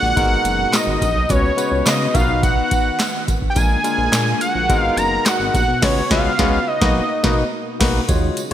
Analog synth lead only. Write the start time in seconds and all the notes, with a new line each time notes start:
Already playing: F#5
0.74 D#5
1.02 D#5
1.30 C#5
1.86 D#5
2.14 F5
2.43 F#5
3.50 G5
3.57 G#5
4.41 F#5
4.79 F5
4.97 A#5
5.25 F#5
5.53 F#5
5.82 C#5
6.11 F5
6.67 D#5